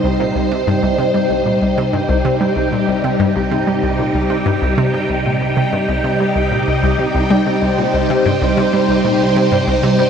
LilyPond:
<<
  \new Staff \with { instrumentName = "Synth texture" } { \time 4/4 \key c \minor \tempo 4 = 95 g''1~ | g''1~ | g''1~ | g''1 | }
  \new Staff \with { instrumentName = "String machine" } { \time 4/4 \key c \minor << { c''1 | g'1~ | g'1 | c''1 | } \\ { <c g ees'>1~ | <c g ees'>1~ | <c g ees'>1~ | <c g ees'>1 | } >> }
  \new Staff \with { instrumentName = "Synth arpeggio sound" } { \clef bass \time 4/4 \key c \minor c,16 bes,16 c,16 c16 g,16 c,16 c16 g16 c,16 bes,16 c,16 c16 g,16 c,16 c16 g16 | c,16 bes,16 c,16 c16 g,16 c,16 c16 g16 c,16 bes,16 c,16 c16 g,16 c,16 c16 g16 | c,16 bes,16 c,16 c16 g,16 c,16 c16 g16 c,16 bes,16 c,16 c,16 c16 c,16 g16 c16 | c,16 bes,16 c,16 c16 g,16 c,16 c16 g16 c,16 bes,16 c,16 c16 g,16 c,16 c16 g16 | }
>>